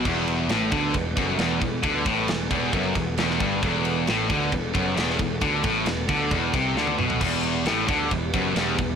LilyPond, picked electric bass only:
\new Staff \with { instrumentName = "Picked electric bass" } { \clef bass \time 4/4 \key e \minor \tempo 4 = 134 e,,4 a,,8 d,8 e,,8 fis,,8 e,,8 e,,8 | d,8 a,,8 e,,8 e,,8 fis,,8 e,,8 e,,8 g,,8 | e,,4 a,,8 d,8 e,,8 fis,,8 e,,8 e,,8 | d,8 a,,8 e,,8 d,8 e,,8 c,8 d,8 b,,8 |
e,,4 a,,8 d,8 e,,8 fis,,8 e,,8 e,,8 | }